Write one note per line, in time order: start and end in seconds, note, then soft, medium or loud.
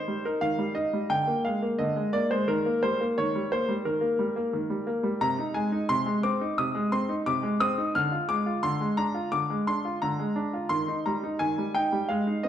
0.00 0.25 C5 medium
0.08 0.26 G3 soft
0.25 0.43 D#4 soft
0.25 0.42 A#4 medium
0.41 0.58 D#3 soft
0.41 0.76 F5 medium
0.58 0.77 G3 soft
0.75 0.94 D#4 soft
0.75 1.10 D#5 medium
0.93 1.10 G3 soft
1.10 1.27 D3 soft
1.10 1.41 G5 medium
1.27 1.45 A#3 soft
1.45 1.63 G#3 soft
1.45 1.65 F5 medium
1.62 1.80 A#3 soft
1.79 1.96 D3 soft
1.79 2.13 D#5 medium
1.96 2.14 G#3 soft
2.13 2.32 A#3 soft
2.13 2.31 D5 medium
2.31 2.48 G#3 soft
2.31 2.48 C5 medium
2.48 2.65 D#3 medium
2.48 2.83 A#4 medium
2.66 2.84 A#3 soft
2.83 3.01 G3 soft
2.83 3.03 C5 medium
3.01 3.18 A#3 soft
3.18 3.34 D#3 medium
3.18 3.51 C#5 medium
3.35 3.52 G3 soft
3.52 3.69 A#3 soft
3.52 3.72 C5 medium
3.69 3.86 G3 soft
3.85 4.02 D#3 soft
3.85 4.83 A#4 medium
4.01 4.19 A#3 soft
4.19 4.37 G3 soft
4.36 4.54 A#3 soft
4.53 4.70 D#3 soft
4.70 4.88 G3 soft
4.87 5.05 A#3 medium
5.03 5.21 G3 soft
5.21 5.38 C3 medium
5.21 5.55 A#5 medium
5.39 5.56 D#4 soft
5.54 5.73 G#3 soft
5.54 5.89 G#5 medium
5.72 5.90 D#4 medium
5.89 6.06 C3 medium
5.89 6.23 C6 medium
6.06 6.24 G#3 soft
6.23 6.41 C4 soft
6.23 6.57 D6 medium
6.41 6.59 D#4 medium
6.58 6.75 C3 soft
6.58 6.92 D#6 medium
6.75 6.92 G#3 soft
6.92 7.10 C4 soft
6.92 7.12 C6 medium
7.09 7.27 D#4 soft
7.26 7.43 C3 medium
7.26 7.60 D6 medium
7.43 7.61 G#3 soft
7.60 7.78 C4 medium
7.60 7.91 D#6 medium
7.78 7.95 D#4 soft
7.95 8.12 D3 medium
7.95 8.29 F6 medium
8.12 8.30 F4 soft
8.29 8.47 G#3 soft
8.29 8.63 D6 medium
8.46 8.64 F4 medium
8.63 8.80 D3 medium
8.63 8.98 C6 medium
8.81 8.99 G#3 soft
8.97 9.16 D4 soft
8.97 9.29 A#5 medium
9.15 9.33 F4 medium
9.32 9.49 D3 soft
9.32 9.53 D6 medium
9.50 9.68 G#3 soft
9.67 9.86 D4 soft
9.67 9.98 C6 medium
9.85 10.03 F4 soft
10.02 10.19 D3 medium
10.02 10.67 A#5 medium
10.19 10.37 G#3 soft
10.36 10.54 D4 medium
10.54 10.71 F4 soft
10.69 10.87 D#3 medium
10.69 11.05 C6 medium
10.88 11.06 D#4 soft
11.06 11.24 G3 soft
11.06 11.40 A#5 medium
11.23 11.41 D#4 soft
11.39 11.57 D#3 soft
11.39 11.71 G#5 medium
11.58 11.76 G3 soft
11.74 11.93 D#4 soft
11.74 12.06 G5 medium
11.92 12.09 G3 soft
12.09 12.26 G#3 medium
12.09 12.44 F5 medium
12.27 12.45 D#4 soft
12.43 12.49 C4 soft
12.43 12.49 D#5 medium